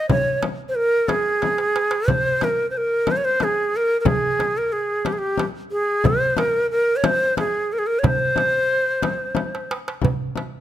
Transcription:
0.09 0.41 C#5 medium
0.09 darbuka dum medium
0.09 frame drum medium
0.43 darbuka tek medium
0.43 frame drum medium
0.69 0.77 C5 medium
0.75 1.10 A#4 loud
0.75 darbuka ka soft
1.08 2.11 G#4 medium
1.08 darbuka tek medium
1.08 frame drum medium
1.42 darbuka tek medium
1.42 frame drum medium
1.58 darbuka ka medium
1.76 darbuka tek medium
1.91 darbuka ka medium
2.08 2.45 C5 loud
2.08 darbuka dum medium
2.08 frame drum medium
2.41 2.69 A#4 medium
2.41 darbuka tek medium
2.41 frame drum medium
2.70 2.79 C5 medium
2.70 darbuka ka soft
2.77 3.13 A#4 medium
3.07 darbuka tek medium
3.07 frame drum medium
3.11 3.19 C5 medium
3.17 3.26 C#5 medium
3.25 3.45 C5 medium
3.40 3.78 G#4 medium
3.40 darbuka tek medium
3.40 frame drum medium
3.74 4.00 A#4 medium
3.74 darbuka ka soft
4.00 4.08 A#4 medium
4.05 4.59 G#4 loud
4.05 frame drum medium
4.05 darbuka dum medium
4.39 darbuka tek medium
4.39 frame drum medium
4.57 4.74 A#4 medium
4.72 5.08 G#4 medium
4.72 darbuka ka soft
5.05 5.14 G4 medium
5.05 darbuka tek medium
5.05 frame drum medium
5.13 5.20 G#4 medium
5.18 5.44 G4 medium
5.38 darbuka tek medium
5.38 frame drum medium
5.71 6.08 G#4 medium
5.71 darbuka ka soft
6.04 6.39 C5 loud
6.04 frame drum medium
6.04 darbuka dum medium
6.37 6.70 A#4 medium
6.37 darbuka tek medium
6.37 frame drum medium
6.71 6.98 A#4 medium
6.71 darbuka ka soft
6.96 7.07 C#5 medium
7.04 7.38 C5 loud
7.04 darbuka tek medium
7.04 frame drum medium
7.37 7.74 G#4 medium
7.37 darbuka tek medium
7.37 frame drum medium
7.71 7.80 A#4 medium
7.71 darbuka ka soft
7.79 7.88 G#4 medium
7.87 8.01 A#4 medium
7.99 8.08 C#5 medium
8.04 9.70 C5 loud
8.04 frame drum medium
8.04 darbuka dum loud
8.36 darbuka tek medium
8.36 frame drum medium
9.03 darbuka tek medium
9.03 frame drum medium
9.35 darbuka tek medium
9.35 frame drum medium
9.55 darbuka ka medium
9.71 darbuka tek medium
9.88 darbuka ka medium
10.02 frame drum medium
10.02 darbuka dum medium
10.36 darbuka tek medium
10.36 frame drum medium

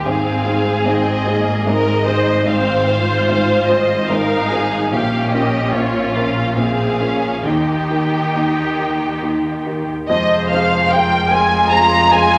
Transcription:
0.05 4.88 G#1 medium
0.05 0.45 G#1 medium
0.05 4.88 G#2 medium
0.05 0.45 G#2 medium
0.05 0.84 C4 medium
0.05 1.67 G#4 medium
0.05 0.84 F5 medium
0.45 0.81 C4 medium
0.45 0.82 D#4 medium
0.45 0.82 G#4 medium
0.85 1.25 G#1 medium
0.85 1.25 G#2 medium
0.85 1.25 C4 medium
0.85 1.67 D#5 medium
1.27 1.67 A#3 medium
1.27 1.63 C4 medium
1.27 1.63 D#4 medium
1.27 1.64 G#4 medium
1.66 2.06 G#1 medium
1.66 2.05 G#2 medium
1.66 2.48 G#3 medium
1.66 2.07 A#4 medium
1.66 2.46 D#5 medium
2.05 2.43 C4 medium
2.05 2.43 D#4 medium
2.05 2.43 G#4 medium
2.05 2.45 C5 medium
2.46 2.86 G#1 medium
2.46 2.86 G#2 medium
2.46 2.88 C4 medium
2.46 4.07 C5 medium
2.46 3.27 F5 medium
2.87 3.24 C4 medium
2.87 3.24 F4 medium
2.87 4.10 F4 medium
2.87 3.25 C5 medium
3.28 3.68 G#1 medium
3.28 3.68 G#2 medium
3.28 3.68 F5 medium
3.66 4.05 C4 medium
3.66 4.06 F4 medium
3.66 4.06 C5 medium
3.66 4.08 D#5 medium
4.08 4.50 G#1 medium
4.08 4.50 G#2 medium
4.08 4.93 D#4 medium
4.08 4.51 A#4 medium
4.08 4.90 F5 medium
4.49 4.89 C4 medium
4.49 4.89 F4 medium
4.49 4.92 G#4 medium
4.49 4.89 C5 medium
4.91 5.32 A#1 medium
4.91 7.42 A#1 medium
4.91 7.42 A#2 medium
4.91 5.32 A#2 medium
4.91 6.54 C#4 medium
4.91 5.73 G4 medium
4.91 5.32 F5 medium
5.32 5.70 C#4 medium
5.32 5.70 F4 medium
5.32 5.70 A#4 medium
5.32 5.73 D#5 medium
5.73 6.13 A#1 medium
5.73 6.14 A#2 medium
5.73 6.58 F4 medium
5.73 6.15 C#5 medium
6.14 6.54 C#4 soft
6.14 6.54 F4 medium
6.14 6.54 A#4 medium
6.14 6.54 F5 medium
6.55 6.99 A#1 medium
6.55 6.99 A#2 medium
6.55 7.01 C4 medium
6.55 7.45 G#4 medium
6.55 7.43 F5 medium
7.00 7.41 C#4 soft
7.00 7.46 C#4 medium
7.00 7.42 F4 soft
7.00 7.42 A#4 medium
7.44 7.89 D#2 medium
7.44 9.86 D#2 medium
7.44 7.89 D#3 medium
7.44 9.86 D#3 medium
7.44 9.89 D#4 medium
7.44 9.91 G4 medium
7.44 9.90 G5 medium
7.90 8.32 D#4 soft
7.90 8.32 G4 soft
7.90 8.32 A#4 soft
8.35 8.78 D#2 soft
8.35 8.78 D#3 medium
8.79 9.19 D#4 soft
8.79 9.19 G4 soft
8.79 9.19 A#4 soft
9.22 9.66 D#2 medium
9.22 9.66 D#3 soft
9.66 10.06 D#4 soft
9.66 10.06 G4 soft
9.66 10.06 A#4 soft
10.08 12.38 F1 medium
10.08 10.50 F2 medium
10.08 12.38 F2 medium
10.08 12.38 G#3 medium
10.08 12.38 F4 medium
10.08 12.38 G#4 medium
10.08 10.88 C5 medium
10.08 10.48 D#5 medium
10.08 12.38 C6 medium
10.49 10.89 C4 medium
10.49 10.89 F4 medium
10.49 10.89 G#4 medium
10.49 10.90 F5 medium
10.91 11.28 C4 medium
10.91 11.28 F4 medium
10.91 11.28 G#4 medium
10.91 11.72 A#4 medium
10.91 11.32 G5 loud
11.29 11.67 C4 medium
11.29 11.67 F4 medium
11.29 11.68 G#4 medium
11.29 11.71 G#5 loud
11.71 12.08 C4 medium
11.71 12.08 F4 medium
11.71 12.38 G#4 medium
11.71 12.08 G#4 medium
11.71 12.12 A#5 loud
12.11 12.38 C4 medium
12.11 12.38 F4 medium
12.11 12.38 G#4 medium
12.11 12.38 G#5 loud

